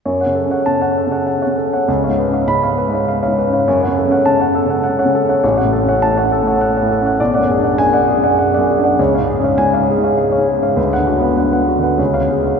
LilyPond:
<<
  \new Staff \with { instrumentName = "Grand piano" } { \time 3/4 \key fis \minor \tempo 4 = 100 << { r4 a''8 r4. | r4 b''8 r4. | r4 a''8 r4. | r4 a''8 r4. |
r4 gis''8 r4. | r4 gis''8 r4. | r16 fis''16 r4. r16 eis''16 r8 | } \\ { cis''16 <cis'' fis''>16 a'16 <cis'' fis''>16 r16 <cis'' fis''>16 a'16 <cis'' fis''>16 fis''16 <cis'' fis''>16 a'16 <cis'' fis''>16 | cis''16 <cis'' eis''>16 b'16 <cis'' eis''>16 r16 <cis'' eis''>16 b'16 <cis'' eis''>16 eis''16 <cis'' eis''>16 b'16 <cis'' eis''>16 | cis''16 <cis'' fis''>16 a'16 <cis'' fis''>16 r16 <cis'' fis''>16 a'16 <cis'' fis''>16 fis''16 <cis'' fis''>16 a'16 <cis'' fis''>16 | cis''16 <cis'' fis''>16 a'16 <cis'' fis''>16 r16 <cis'' fis''>16 a'16 <cis'' fis''>16 fis''16 <cis'' fis''>16 a'16 <cis'' fis''>16 |
d''16 <d'' fis''>16 gis'16 <d'' fis''>16 r16 <d'' fis''>16 gis'16 <d'' fis''>16 fis''16 <d'' fis''>16 gis'16 <d'' fis''>16 | cis''16 <cis'' eis''>16 gis'16 <cis'' eis''>16 r16 <cis'' eis''>16 gis'16 <cis'' eis''>16 eis''16 <cis'' eis''>16 gis'16 <cis'' eis''>16 | b'16 b'16 fis'16 <b' fis''>16 fis''16 <b' fis''>16 fis'16 <b' fis''>16 cis''16 cis''16 gis'16 <cis'' eis''>16 | } >> }
  \new Staff \with { instrumentName = "Grand piano" } { \clef bass \time 3/4 \key fis \minor \tuplet 3/2 { fis,8 cis8 cis'8 cis4 cis8~ cis8 cis8 cis'8 } | \tuplet 3/2 { cis,8 gis,8 cis'8 gis,4 gis,8~ gis,8 gis,8 cis'8 } | \tuplet 3/2 { fis,8 cis8 cis'8 cis4 cis8~ cis8 cis8 cis'8 } | \tuplet 3/2 { a,,8 a,8 cis'8 a,4 a,8~ a,8 a,8 cis'8 } |
\tuplet 3/2 { b,,8 fis,8 d'8 fis,4 fis,8~ fis,8 fis,8 d'8 } | \tuplet 3/2 { cis,8 gis,8 cis'8 gis,4 gis,8~ gis,8 gis,8 cis'8 } | \tuplet 3/2 { d,8 d8 b8 d4 d8 cis,8 cis'4 } | }
>>